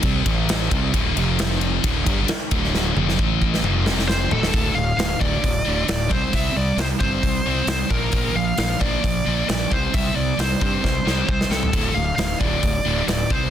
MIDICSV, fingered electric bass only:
0, 0, Header, 1, 3, 480
1, 0, Start_track
1, 0, Key_signature, -1, "minor"
1, 0, Tempo, 450113
1, 994, Time_signature, 4, 2, 24, 8
1, 14396, End_track
2, 0, Start_track
2, 0, Title_t, "Fingered electric bass"
2, 0, Program_c, 0, 33
2, 38, Note_on_c, 0, 36, 86
2, 259, Note_off_c, 0, 36, 0
2, 276, Note_on_c, 0, 33, 92
2, 722, Note_off_c, 0, 33, 0
2, 759, Note_on_c, 0, 36, 98
2, 980, Note_off_c, 0, 36, 0
2, 996, Note_on_c, 0, 26, 94
2, 1219, Note_off_c, 0, 26, 0
2, 1231, Note_on_c, 0, 29, 99
2, 1911, Note_off_c, 0, 29, 0
2, 1958, Note_on_c, 0, 26, 80
2, 2180, Note_off_c, 0, 26, 0
2, 2203, Note_on_c, 0, 31, 90
2, 2423, Note_off_c, 0, 31, 0
2, 2682, Note_on_c, 0, 26, 91
2, 3126, Note_off_c, 0, 26, 0
2, 3156, Note_on_c, 0, 29, 84
2, 3380, Note_off_c, 0, 29, 0
2, 3402, Note_on_c, 0, 33, 99
2, 3847, Note_off_c, 0, 33, 0
2, 3871, Note_on_c, 0, 29, 91
2, 4552, Note_off_c, 0, 29, 0
2, 4599, Note_on_c, 0, 26, 94
2, 4822, Note_off_c, 0, 26, 0
2, 4835, Note_on_c, 0, 26, 77
2, 5000, Note_off_c, 0, 26, 0
2, 5077, Note_on_c, 0, 26, 75
2, 5241, Note_off_c, 0, 26, 0
2, 5309, Note_on_c, 0, 26, 87
2, 5477, Note_off_c, 0, 26, 0
2, 5557, Note_on_c, 0, 26, 90
2, 5722, Note_off_c, 0, 26, 0
2, 5797, Note_on_c, 0, 26, 86
2, 5962, Note_off_c, 0, 26, 0
2, 6047, Note_on_c, 0, 26, 77
2, 6209, Note_off_c, 0, 26, 0
2, 6279, Note_on_c, 0, 26, 82
2, 6515, Note_on_c, 0, 36, 80
2, 6531, Note_off_c, 0, 26, 0
2, 6680, Note_off_c, 0, 36, 0
2, 6746, Note_on_c, 0, 36, 80
2, 6914, Note_off_c, 0, 36, 0
2, 6988, Note_on_c, 0, 36, 75
2, 7156, Note_off_c, 0, 36, 0
2, 7218, Note_on_c, 0, 36, 92
2, 7389, Note_off_c, 0, 36, 0
2, 7469, Note_on_c, 0, 31, 84
2, 7637, Note_off_c, 0, 31, 0
2, 7711, Note_on_c, 0, 36, 84
2, 7878, Note_off_c, 0, 36, 0
2, 7947, Note_on_c, 0, 36, 80
2, 8115, Note_off_c, 0, 36, 0
2, 8179, Note_on_c, 0, 36, 90
2, 8350, Note_off_c, 0, 36, 0
2, 8430, Note_on_c, 0, 34, 84
2, 8597, Note_off_c, 0, 34, 0
2, 8669, Note_on_c, 0, 34, 87
2, 8836, Note_off_c, 0, 34, 0
2, 8906, Note_on_c, 0, 34, 74
2, 9075, Note_off_c, 0, 34, 0
2, 9153, Note_on_c, 0, 34, 92
2, 9319, Note_off_c, 0, 34, 0
2, 9390, Note_on_c, 0, 34, 89
2, 9557, Note_off_c, 0, 34, 0
2, 9638, Note_on_c, 0, 34, 82
2, 9802, Note_off_c, 0, 34, 0
2, 9884, Note_on_c, 0, 34, 76
2, 10046, Note_off_c, 0, 34, 0
2, 10121, Note_on_c, 0, 34, 86
2, 10284, Note_off_c, 0, 34, 0
2, 10359, Note_on_c, 0, 36, 77
2, 10522, Note_off_c, 0, 36, 0
2, 10602, Note_on_c, 0, 36, 76
2, 10764, Note_off_c, 0, 36, 0
2, 10833, Note_on_c, 0, 36, 76
2, 10998, Note_off_c, 0, 36, 0
2, 11074, Note_on_c, 0, 36, 88
2, 11239, Note_off_c, 0, 36, 0
2, 11322, Note_on_c, 0, 43, 80
2, 11484, Note_off_c, 0, 43, 0
2, 11554, Note_on_c, 0, 36, 83
2, 11718, Note_off_c, 0, 36, 0
2, 11790, Note_on_c, 0, 36, 76
2, 11955, Note_off_c, 0, 36, 0
2, 12035, Note_on_c, 0, 36, 92
2, 12198, Note_off_c, 0, 36, 0
2, 12258, Note_on_c, 0, 36, 73
2, 12427, Note_off_c, 0, 36, 0
2, 12514, Note_on_c, 0, 26, 80
2, 12677, Note_off_c, 0, 26, 0
2, 12743, Note_on_c, 0, 26, 78
2, 12910, Note_off_c, 0, 26, 0
2, 12988, Note_on_c, 0, 26, 86
2, 13153, Note_off_c, 0, 26, 0
2, 13228, Note_on_c, 0, 26, 80
2, 13393, Note_off_c, 0, 26, 0
2, 13473, Note_on_c, 0, 26, 80
2, 13636, Note_off_c, 0, 26, 0
2, 13708, Note_on_c, 0, 26, 73
2, 13873, Note_off_c, 0, 26, 0
2, 13945, Note_on_c, 0, 26, 80
2, 14110, Note_off_c, 0, 26, 0
2, 14188, Note_on_c, 0, 36, 83
2, 14352, Note_off_c, 0, 36, 0
2, 14396, End_track
3, 0, Start_track
3, 0, Title_t, "Muted fingered electric bass strokes"
3, 2442, Note_on_c, 9, 29, 42
3, 2549, Note_off_c, 9, 29, 0
3, 14396, End_track
0, 0, End_of_file